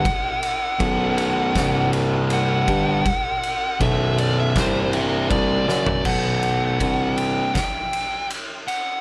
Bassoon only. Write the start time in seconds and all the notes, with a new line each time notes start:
0.80 B1
1.56 C2
2.68 G2
3.81 B1
4.56 C2
5.31 C2
5.68 F#2
6.05 B1
6.81 C2